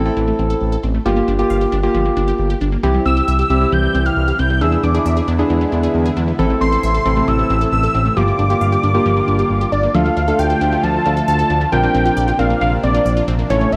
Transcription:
Already playing: A1
0.06 A3 C4 E4 A4
0.17 A1 E3
0.28 A3
0.39 A1 C4
0.50 A4
0.61 A1
0.72 A4
0.83 A1 C4
0.95 A3
1.06 G1 F3 A#3 F4 G4
1.17 A#3
1.28 G1 D4
1.39 A#3 F4 G4
1.50 G1 F5
1.61 G4
1.72 G1 D4
1.83 A#3 F4 G4
1.95 G1 F3
2.06 A#3
2.17 G1 D4
2.28 G4
2.39 G1
2.50 G4
2.61 G1 D4
2.72 A#3
2.83 C2 C3 E3 G3 C4 E4 G4
2.94 G3
3.06 C2 C4 E6
3.17 G4
3.28 C2 E5 E6
3.39 G4
3.50 C2 C4 E4 G4
3.61 G3 C4 E4 G4
3.72 C2 E3 G6
3.83 G3
3.94 C2 C4
4.06 G4 F6
4.17 C2
4.28 G4
4.39 C2 C4 G6
4.50 G3
4.61 E2 D3 E3 G#3 B3 D4 E4 G#4 E6
4.72 B3
4.83 E2 D4 D6
4.94 D4 E4 G#4
5.06 E2 E5
5.17 G#4
5.28 E2 D4
5.39 B3 D4 E4 G#4
5.50 E2 E3
5.61 B3
5.72 E2 D4
5.83 G#4
5.94 E2
6.06 G#4
6.17 E2 D4
6.28 B3
6.39 A1 C3 E3 A3 C4 E4 A4
6.50 A3
6.61 A1 C4 C6
6.72 A4
6.83 A1 E5 C6
6.94 A4
7.05 A1 C4 E4 A4
7.17 A3 C4 E4 A4
7.28 A1 E3 E6
7.39 A3
7.50 A1 C4
7.61 A4
7.72 A1 E6
7.83 A4
7.94 A1 C4
8.06 A3
8.17 G1 D3 F3 G3 A#3 F4 G4 D6
8.28 A#3
8.39 G1 D4
8.50 A#3 F4 G4
8.61 G1 F5
8.72 G4
8.83 G1 D4
8.94 A#3 F4 G4
9.05 G1 F3
9.17 A#3
9.28 G1 D4
9.39 G4
9.50 G1
9.61 G4
9.72 G1 D4 D5
9.83 A#3
9.94 D2 D3 F3 A3 D4 F4 A4 F5
10.06 A3
10.17 D2 D4
10.28 A3 D4 F4 A4
10.39 D2 F5 G5
10.50 A4
10.61 D2 D4
10.72 A3
10.83 D2 F3 A5
11.06 D2 A3 D4 F4 A4
11.17 A4
11.28 D2 F5 A5
11.39 A4
11.50 D2 D4
11.61 A3
11.72 A#1 C3 D3 A#3 C4 D4 F4 A#4 G5
11.83 A#3 C4 D4 F4 A#4
11.94 A#1 C4
12.06 F4
12.17 A#1 D5
12.28 F4
12.39 A#1 C4 D4 F4 A#4 F5
12.50 A#3
12.61 A#1 D3 F5
12.83 A#1 C4 D5
12.95 F4
13.06 A#1 D5
13.17 F4
13.28 A#1 C4
13.39 A#3
13.50 A1 C#3 E3 A3 C#4 E4 A4 C#5
13.61 A3
13.72 A1 C#4 E5

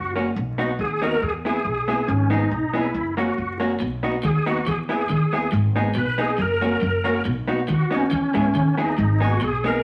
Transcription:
Already playing: F#1 F#4
0.16 A#3 C#4 F#4
0.36 B1
0.58 B3 D#4 F#4
0.79 D#2 G#4, muted hollow-body jazz guitar stroke
1.02 B3 D#4 F#4 A#4
1.22 E2 G#4
1.45 B3 E4 G#4
1.65 B1
1.88 B3 E4 G#4
2.07 G#1 C#4
2.30 B3 D#4 G#4
2.51 B1, muted hollow-body jazz guitar stroke
2.73 B3 D#4 E4 G#4
2.94 F#1
3.17 A#3 C#4 F#4
3.38 F#1
3.60 A#3 C#4 F#4
3.80 B1 B2
4.03 B3 D#4 F#4
4.23 D#2 D#3 G#4, muted hollow-body jazz guitar stroke
4.46 B3 D#4 F#4
4.66 E2 E3 G#4
4.89 B3 E4 G#4
5.09 D#2 D#3
5.33 B3 E4 G#4
5.52 G#1 G#2
5.76 B3 D#4 G#4
5.95 B1 B2 B4, muted hollow-body jazz guitar stroke
6.18 B3 D#4 G#4
6.38 F#1 F#2 A#4
6.61 A#3 C#4 F#4 A#4
6.82 F#1 F#2
7.04 A#3 C#4 F#4
7.25 B1 B2
7.47 B3 D#4 F#4
7.68 D#2 D#3, muted hollow-body jazz guitar stroke
7.72 F#4
7.91 B3 C#4 D#4 F#4
8.11 E2 E3
8.34 G#2 G#3 B3 E4 G#4
8.55 D#2 D#3
8.77 B3 D#4 E4 G#4
8.98 G#1 G#2
9.20 B3 D#4 F#4 G#4
9.41 B1 B2 G#4, muted hollow-body jazz guitar stroke
9.64 B3 D#4 G#4 A#4

